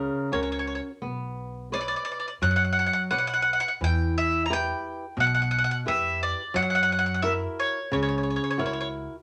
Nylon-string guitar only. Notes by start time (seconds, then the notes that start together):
Already playing: C#3
0.32 C#4 F#4 A#4
1.02 B3
1.72 B4 C#5 D5
2.42 F#3
3.11 B4 C#5 D5
3.81 E3
4.50 E4 G4 B4
5.17 B2
5.86 E4 G4 B4
6.54 F#3
7.23 E4 F#4 A#4
7.92 C#3
8.58 E4 F#4 A#4